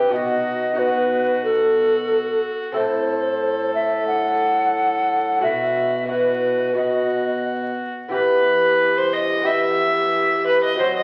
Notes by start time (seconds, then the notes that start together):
Already playing: C3 G4 B4
0.08 B2 B3 D#4 F#4
0.12 F#4 D#5
0.73 B3 D#4 F#4
0.78 F#4 B4
1.44 A4
2.72 A2 C4 E4 A4 C5
2.76 A4
3.75 E5
4.07 F#5
5.39 B2 B3 E4 F#4
5.43 B2 E5
6.05 B3 E4 F#4 B4
6.73 B2 B3 F#4 D#5
8.08 E3 B3 E4 G4
8.13 E3 B4
8.97 C5
9.13 D#5
9.41 B3 E4 G4
9.46 G4 E5
10.47 B4
10.64 D#5
10.75 F#3 C4 F#4
10.79 F#3 C5
10.97 D#5